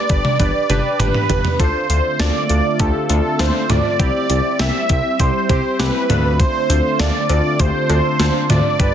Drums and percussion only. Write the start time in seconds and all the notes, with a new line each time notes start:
0.09 kick, closed hi-hat
0.25 mid tom
0.40 kick, closed hi-hat, high tom
0.70 closed hi-hat, mid tom
1.00 closed hi-hat, mid tom
1.14 mid tom
1.30 closed hi-hat, floor tom
1.45 floor tom
1.60 kick, closed hi-hat
1.90 closed hi-hat
2.20 snare, closed hi-hat
2.49 closed hi-hat
2.80 kick, closed hi-hat
3.09 closed hi-hat
3.39 snare, closed hi-hat
3.70 closed hi-hat, mid tom
4.00 kick, closed hi-hat
4.30 closed hi-hat
4.59 snare, closed hi-hat
4.89 kick, closed hi-hat
5.20 kick, closed hi-hat
5.50 kick, closed hi-hat
5.80 snare, closed hi-hat
6.10 closed hi-hat, mid tom
6.40 kick, closed hi-hat
6.70 closed hi-hat
7.00 snare, closed hi-hat
7.29 closed hi-hat, cowbell
7.59 kick, closed hi-hat
7.90 closed hi-hat, cowbell
8.20 snare, closed hi-hat
8.50 closed hi-hat, mid tom
8.80 kick, closed hi-hat